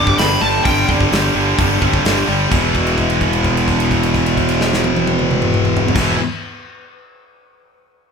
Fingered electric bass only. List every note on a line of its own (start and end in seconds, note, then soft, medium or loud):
0.00 0.14 G1 medium
0.18 0.37 G1 medium
0.42 0.60 G1 medium
0.66 0.84 G1 medium
0.89 1.07 G1 medium
1.12 1.30 G1 medium
1.35 1.53 G1 medium
1.59 1.77 G1 medium
1.82 2.00 G1 medium
2.05 2.23 G1 medium
2.29 2.47 G1 medium
2.52 5.86 E1 medium
5.95 6.15 E1 medium